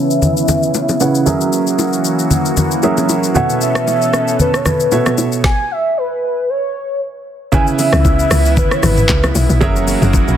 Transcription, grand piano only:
0.00 0.96 C#3 medium
0.00 0.97 C#4 medium
0.00 0.97 E4 medium
0.00 0.97 B4 medium
0.00 0.97 E5 medium
1.00 1.26 C#3 medium
1.00 1.25 C#4 medium
1.00 1.27 E4 medium
1.00 1.27 B4 medium
1.00 1.27 F#5 medium
1.26 2.79 F#3 medium
1.26 2.80 C#4 medium
1.26 2.80 G#4 medium
1.26 2.80 A#4 medium
1.26 2.81 E5 medium
2.83 3.35 F#3 medium
2.83 3.35 C#4 medium
2.83 3.35 G#4 medium
2.83 3.35 A#4 medium
2.83 3.35 E5 medium
3.34 4.88 B2 medium
3.34 4.88 B3 medium
3.34 4.89 A4 medium
3.34 4.89 C#5 medium
3.34 4.89 E5 medium
4.92 5.44 B2 soft
4.92 5.44 B3 soft
4.92 5.44 A4 soft
4.92 5.44 C#5 soft
4.92 5.44 E5 medium
7.52 9.57 C#3 medium
7.52 9.57 C#4 medium
7.52 9.57 E4 medium
7.52 9.58 B4 medium
7.52 9.58 E5 medium
9.60 10.37 F#3 medium
9.60 10.37 C#4 medium
9.60 10.37 G#4 medium
9.60 10.37 A#4 medium
9.60 10.37 E5 medium

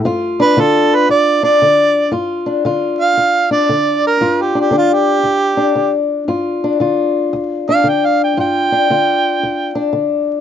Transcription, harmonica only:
0.41 0.61 B4 loud
0.60 0.97 A4 medium
0.95 1.10 B4 loud
1.10 1.44 D5 medium
1.44 2.11 D5 loud
3.01 3.51 F5 medium
3.52 4.02 D5 medium
4.07 4.43 A#4 medium
4.41 4.57 G4 medium
4.61 4.75 G4 medium
4.78 4.95 F4 medium
4.93 5.93 G4 medium
7.70 7.90 F5 medium
7.88 8.07 G5 medium
8.06 8.21 F5 medium
8.23 8.39 G5 medium
8.40 9.91 G5 loud

